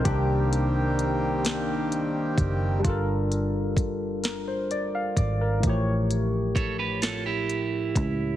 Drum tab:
HH |xxxxxx|xxxxxx|xxxxxx|
SD |---o--|---o--|---o--|
BD |o----o|o-o--o|o-o--o|